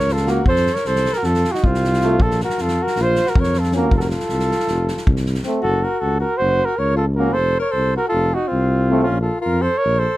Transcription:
0.00 0.48 C#2 medium
0.00 0.14 A#4 medium
0.00 0.14 C#5 loud
0.09 0.33 F4 medium
0.09 0.31 A4 medium
0.09 snare soft
0.17 snare soft
0.26 0.42 A#3 medium
0.26 0.42 F#4 medium
0.26 snare soft
0.30 0.48 F#4 medium
0.30 0.47 A#4 medium
0.46 0.68 F2 medium
0.46 0.77 A4 medium
0.46 0.75 C5 loud
0.46 kick medium
0.56 snare soft
0.67 snare soft
0.74 0.89 A#4 medium
0.74 0.88 C#5 medium
0.74 snare soft
0.85 1.07 C2 medium
0.85 1.19 A4 medium
0.85 1.15 C5 loud
0.85 snare soft
0.96 snare soft
1.05 snare soft
1.13 1.26 A#4 loud
1.13 snare soft
1.18 1.29 F#4 medium
1.23 1.45 F2 loud
1.23 1.53 A4 loud
1.23 snare soft
1.28 1.57 F4 medium
1.34 snare soft
1.44 snare soft
1.52 1.68 D#4 medium
1.52 1.66 F#4 medium
1.52 snare soft
1.63 2.22 C2 medium
1.63 2.25 C4 medium
1.63 2.23 F4 loud
1.63 kick medium
1.74 snare soft
1.84 snare soft
1.93 snare soft
2.00 2.18 A3 medium
2.00 2.16 F4 medium
2.00 snare soft
2.20 2.42 A#1 medium
2.20 2.41 F4 medium
2.20 2.41 A4 loud
2.20 kick medium
2.31 snare soft
2.40 2.63 F#4 medium
2.40 2.63 A#4 medium
2.40 snare soft
2.50 snare soft
2.58 2.81 F2 medium
2.58 2.83 F4 medium
2.58 2.85 A4 medium
2.58 snare soft
2.68 snare soft
2.82 3.02 F#4 medium
2.82 3.04 A#4 medium
2.87 snare soft
2.96 3.19 A#1 loud
2.96 snare soft
3.00 3.28 F4 loud
3.00 3.31 C5 loud
3.16 snare soft
3.26 3.40 F#4 medium
3.26 3.42 A#4 medium
3.26 snare soft
3.35 3.93 F2 medium
3.35 3.59 A#4 medium
3.35 kick loud
3.40 3.61 C#5 medium
3.40 snare soft
3.54 snare soft
3.58 3.75 F4 medium
3.58 3.75 A4 medium
3.64 snare soft
3.72 3.91 A#3 medium
3.72 3.88 C#4 medium
3.72 3.94 F#4 medium
3.72 3.98 A#4 medium
3.72 snare soft
3.91 4.13 F1 medium
3.91 4.00 F4 medium
3.91 kick medium
3.97 4.10 F#4 medium
3.97 4.00 A4 medium
3.97 4.08 A#4 medium
3.97 snare soft
4.06 5.29 F4 medium
4.06 5.27 A4 medium
4.06 snare soft
4.20 snare soft
4.29 4.52 C2 medium
4.29 snare soft
4.40 snare soft
4.51 snare soft
4.59 snare soft
4.67 4.90 F1 medium
4.67 snare soft
4.88 snare soft
4.97 snare soft
5.07 5.38 C2 medium
5.07 kick medium
5.16 snare soft
5.26 snare soft
5.34 snare soft
5.43 5.62 A3 medium
5.43 5.60 C4 soft
5.43 snare soft
5.61 5.85 F#1 loud
5.61 5.82 F#4 medium
5.61 5.86 A4 loud
5.82 5.99 F#4 medium
5.82 6.02 A#4 medium
5.99 6.23 C#2 medium
5.99 6.19 F#4 medium
5.99 6.20 A4 medium
6.19 6.36 F#4 medium
6.19 6.39 A#4 loud
6.36 6.65 F#4 medium
6.36 6.66 C5 loud
6.41 6.62 F#1 loud
6.65 6.78 F#4 medium
6.65 6.80 A#4 loud
6.76 7.36 C#2 medium
6.76 6.95 A#4 medium
6.76 6.96 C#5 medium
6.96 7.05 F4 medium
6.96 7.06 A4 medium
7.15 7.33 A#3 medium
7.15 7.33 C#4 medium
7.15 7.35 F#4 medium
7.15 7.35 A#4 medium
7.33 7.56 F1 medium
7.33 7.58 A4 medium
7.33 7.60 C5 loud
7.59 7.73 A#4 medium
7.59 7.72 C#5 medium
7.71 7.95 C2 medium
7.71 7.95 A4 medium
7.71 7.96 C5 loud
7.96 8.09 F#4 medium
7.96 8.08 A#4 loud
8.08 8.37 F4 loud
8.08 8.35 A4 loud
8.13 8.34 F1 loud
8.34 8.49 D#4 medium
8.34 8.49 F#4 medium
8.48 9.03 C4 medium
8.48 9.02 F4 loud
8.52 9.09 C2 medium
8.90 9.06 A3 medium
8.90 9.05 C4 medium
9.03 9.20 C#4 medium
9.03 9.21 F4 loud
9.08 9.29 A#1 medium
9.21 9.40 F4 medium
9.21 9.40 A4 medium
9.41 9.63 F4 loud
9.41 9.63 A#4 medium
9.46 9.67 F2 medium
9.62 9.80 A4 medium
9.62 9.79 C5 loud
9.78 10.01 A#4 medium
9.78 10.00 C#5 loud
9.85 10.06 A#1 medium
9.99 10.17 A4 medium
9.99 10.17 C5 loud

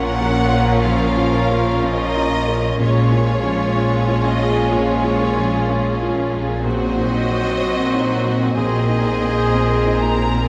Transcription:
0.00 2.77 A#1 medium
0.00 0.81 A#2 medium
0.00 2.73 A#2 medium
0.00 2.76 A#2 medium
0.00 0.21 F3 soft
0.00 0.84 F3 soft
0.00 2.77 F3 medium
0.00 0.40 C#4 soft
0.00 1.08 C#4 soft
0.00 2.76 C#4 medium
0.00 2.77 C#4 medium
0.00 0.81 F4 medium
0.00 1.17 F4 soft
0.00 2.77 F4 medium
0.00 0.59 A#4 medium
0.00 2.76 A#4 medium
0.00 0.82 C#5 medium
0.00 1.57 C#5 medium
0.00 0.85 F#5 medium
0.11 2.05 A#5 medium
0.21 0.73 F3 soft
0.53 1.05 A#4 soft
0.61 1.32 A#4 medium
0.84 1.38 F3 soft
0.84 4.75 F3 medium
0.84 2.76 F4 medium
0.84 2.76 C#5 medium
0.84 1.82 F5 medium
1.09 3.02 C#4 medium
1.17 1.70 F4 soft
1.34 2.54 A#4 soft
1.51 2.03 F3 soft
1.58 3.50 C#5 soft
1.82 2.35 C#4 soft
1.82 2.80 D#5 loud
1.82 2.30 F5 medium
2.06 2.83 A#5 medium
2.16 2.68 F4 soft
2.31 3.74 F5 medium
2.48 2.80 A#4 soft
2.55 2.84 A#4 soft
2.79 8.53 A#1 medium
2.79 4.70 A#2 medium
2.79 4.68 A#2 medium
2.79 8.53 A#2 medium
2.79 6.48 F3 medium
2.79 6.65 G#3 medium
2.79 6.48 C#4 medium
2.79 6.61 C#4 medium
2.79 6.61 F4 medium
2.79 4.68 F4 medium
2.79 6.64 G#4 medium
2.79 4.68 C#5 medium
2.79 4.21 C#5 medium
3.03 4.95 C#4 soft
3.12 3.63 F4 medium
3.27 4.46 G#4 soft
3.43 3.95 F3 soft
3.52 5.42 C#5 medium
3.75 4.27 C#4 soft
3.75 4.23 F5 medium
4.00 5.91 G#5 medium
4.08 4.59 F4 medium
4.24 4.72 D#5 medium
4.24 5.67 F5 medium
4.40 4.91 G#4 medium
4.47 5.18 G#4 medium
4.72 6.63 A#2 medium
4.72 6.61 A#2 medium
4.72 6.34 F4 medium
4.72 6.17 C#5 medium
4.72 6.35 C#5 medium
4.96 6.69 C#4 soft
5.04 5.56 F4 soft
5.19 6.40 G#4 soft
5.37 5.88 F3 soft
5.44 6.69 C#5 soft
5.68 6.21 C#4 medium
5.68 6.16 F5 medium
5.92 6.69 G#5 medium
6.02 6.53 F4 soft
6.17 6.69 F5 soft
6.34 6.66 G#4 medium
6.41 6.69 G#4 soft
6.64 8.55 A#2 medium
6.64 8.53 A#2 medium
6.64 8.53 F#3 medium
6.64 10.45 C4 medium
6.64 8.52 F#4 medium
6.64 8.58 F#4 medium
6.64 8.52 C5 medium
6.64 8.56 C5 medium
6.64 8.52 D#5 medium
6.89 8.79 C4 soft
6.97 7.48 D#4 soft
7.13 8.31 F#4 medium
7.30 7.81 F#3 soft
7.36 9.27 C5 medium
7.60 8.12 C4 soft
7.60 8.07 D#5 medium
7.84 8.60 F#5 soft
7.94 8.44 D#4 soft
8.08 9.51 D#5 medium
8.26 8.57 F#4 medium
8.32 8.60 F#4 medium
8.56 10.48 A#1 medium
8.56 10.48 A#2 medium
8.56 10.46 A#2 medium
8.56 10.48 G#3 medium
8.56 10.48 A#3 medium
8.56 10.48 G#4 medium
8.56 10.48 A#4 medium
8.56 10.46 C5 medium
8.56 9.98 D#5 medium
8.81 10.48 C4 soft
8.89 9.40 D#4 soft
9.05 10.23 G#4 medium
9.21 9.73 A#3 soft
9.29 10.48 C5 soft
9.52 10.05 C4 medium
9.52 9.99 D#5 medium
9.76 10.48 G#5 medium
9.86 10.37 D#4 soft
10.00 10.48 D#5 medium
10.00 10.48 A#5 medium
10.18 10.48 G#4 medium
10.25 10.48 G#4 medium

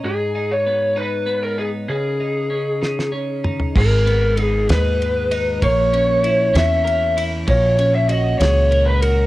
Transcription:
0.00 1.88 G#2 medium
0.00 0.35 D#4 medium
0.06 0.52 G#4 medium
0.35 0.96 D#4 medium
0.51 0.98 C#5 medium
0.66 1.25 B3 medium
0.96 1.58 D#4 medium
0.96 1.40 B4 medium
1.26 1.94 B3 medium
1.43 1.57 A#4 medium
1.58 2.20 D#4 medium
1.58 1.67 G#4 medium
1.88 3.75 C#3 medium
1.88 3.10 G#4 medium
2.20 2.81 D#4 medium
2.50 3.11 C#4 soft
2.82 3.44 D#4 medium
2.82 snare medium
2.99 snare soft
3.12 3.81 C#4 soft
3.44 3.82 D#4 soft
3.44 mid tom medium
3.60 floor tom medium
3.76 4.65 G#1 medium
3.76 5.62 G#2 medium
3.76 4.41 A#4 medium
3.76 kick loud
3.76 crash medium
4.06 5.68 B3 medium
4.06 ride soft
4.37 5.30 D#4 medium
4.37 4.66 G#4 medium
4.37 ride soft
4.69 5.59 D#2 medium
4.69 5.62 G#3 medium
4.69 5.59 B4 medium
4.69 snare loud
4.69 ride medium
5.02 ride soft
5.32 5.69 D#4 medium
5.32 ride medium
5.62 6.51 A#1 medium
5.62 8.40 A#3 medium
5.62 6.52 C#5 loud
5.62 kick loud
5.62 ride medium
5.93 6.53 C#4 medium
5.93 ride soft
6.24 7.16 E4 medium
6.24 ride soft
6.54 7.43 E2 medium
6.54 7.53 C#4 medium
6.54 7.21 E5 loud
6.54 snare loud
6.54 ride medium
6.85 8.44 A#4 medium
6.85 ride soft
7.17 7.54 E4 medium
7.17 ride medium
7.47 8.36 A#1 loud
7.47 9.27 A#2 medium
7.47 7.94 C#5 loud
7.47 kick loud
7.47 ride medium
7.78 9.27 C#4 medium
7.78 ride soft
7.95 8.09 E5 loud
8.09 9.01 F#4 medium
8.09 8.38 D#5 loud
8.09 ride soft
8.39 9.27 C#2 medium
8.39 9.27 G#3 medium
8.39 8.87 C#5 loud
8.39 snare loud
8.39 ride medium
8.71 9.27 A#4 medium
8.71 ride soft
8.86 9.01 B4 medium
9.01 9.27 F#4 medium
9.01 9.27 A#4 medium
9.01 ride medium

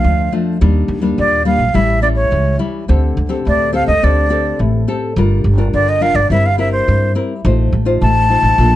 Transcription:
0.00 0.28 F3 medium
0.00 0.28 A3 medium
0.00 0.28 D4 medium
0.00 0.32 F5 medium
0.04 0.28 D2 medium
0.04 0.58 F2 medium
0.32 0.56 F3 medium
0.32 0.56 A3 medium
0.32 0.57 D4 medium
0.61 0.85 D#2 loud
0.61 1.15 D#3 medium
0.61 0.99 G3 medium
0.61 0.99 A#3 medium
0.61 1.00 D4 medium
0.88 1.13 D#2 medium
1.02 1.41 G3 medium
1.02 1.41 A#3 medium
1.02 1.41 D4 medium
1.18 1.54 D#2 medium
1.18 1.72 A#2 medium
1.18 1.45 D5 medium
1.45 1.63 G3 medium
1.45 1.63 A#3 medium
1.45 1.63 D4 medium
1.45 1.77 F5 medium
1.59 1.72 A#1 medium
1.74 2.23 A1 medium
1.74 2.29 A2 medium
1.74 1.98 G3 medium
1.74 1.99 C#4 medium
1.74 1.99 E4 medium
1.74 2.02 E5 medium
2.02 2.55 G3 medium
2.02 2.55 C#4 medium
2.02 2.56 E4 medium
2.02 2.08 D5 medium
2.16 2.56 C#5 medium
2.31 2.56 C#2 medium
2.31 2.86 E3 medium
2.59 2.84 G3 medium
2.59 2.84 C#4 medium
2.59 2.84 E4 medium
2.88 3.13 D2 medium
2.88 3.43 D3 medium
2.88 3.15 C4 medium
2.88 3.16 G4 medium
2.88 3.16 A4 medium
3.17 3.41 D2 medium
3.29 3.68 C4 medium
3.29 3.69 G4 medium
3.29 3.69 A4 medium
3.45 3.83 D2 medium
3.45 4.00 A2 medium
3.45 3.74 D5 medium
3.73 3.90 C4 medium
3.73 3.91 G4 soft
3.73 3.91 A4 medium
3.73 3.86 F5 medium
3.87 4.00 D2 medium
3.87 4.05 D#5 medium
4.03 4.52 D2 medium
4.03 4.57 D3 medium
4.03 4.27 C4 medium
4.03 4.27 G4 medium
4.03 4.27 A4 medium
4.03 4.60 D5 medium
4.30 4.83 C4 medium
4.30 4.83 G4 medium
4.30 4.83 A4 medium
4.59 4.84 A1 medium
4.59 5.14 A2 medium
4.88 5.12 C4 medium
4.88 5.12 G4 medium
4.88 5.12 A4 medium
5.16 5.41 G1 medium
5.16 5.71 G3 medium
5.16 5.44 D4 medium
5.16 5.44 F4 medium
5.16 5.44 A#4 medium
5.44 5.69 G1 medium
5.58 5.97 D4 medium
5.58 5.97 F4 soft
5.58 5.97 A#4 medium
5.74 6.10 G1 medium
5.74 6.28 D3 medium
5.74 5.90 D5 medium
5.89 6.03 D#5 medium
6.01 6.18 D4 medium
6.01 6.19 F4 soft
6.01 6.19 A#4 medium
6.01 6.17 F5 medium
6.14 6.27 G1 medium
6.14 6.30 D5 medium
6.30 6.79 G1 medium
6.30 6.85 G3 medium
6.30 6.47 C4 medium
6.30 6.48 E4 medium
6.30 6.48 A#4 medium
6.30 6.48 E5 medium
6.46 6.58 F5 medium
6.58 7.11 C4 medium
6.58 7.11 E4 medium
6.58 7.11 A#4 medium
6.58 6.72 E5 medium
6.72 7.13 C5 medium
6.88 7.12 G2 medium
6.88 7.42 G3 medium
7.15 7.32 C4 medium
7.15 7.33 E4 medium
7.15 7.33 A#4 medium
7.45 7.69 A1 loud
7.45 7.99 A3 medium
7.45 7.71 D#4 medium
7.45 7.72 F4 medium
7.45 7.72 C5 medium
7.72 7.97 A1 medium
7.85 8.25 D#4 medium
7.85 8.25 F4 medium
7.85 8.25 C5 medium
8.02 8.38 A1 medium
8.02 8.56 A3 medium
8.02 8.76 A5 loud
8.30 8.56 D#4 medium
8.30 8.56 F4 medium
8.30 8.57 C5 medium
8.42 8.55 A1 medium
8.58 8.76 A#1 medium
8.58 8.76 A#3 medium
8.58 8.76 D4 medium
8.58 8.76 F4 medium
8.58 8.76 A4 medium

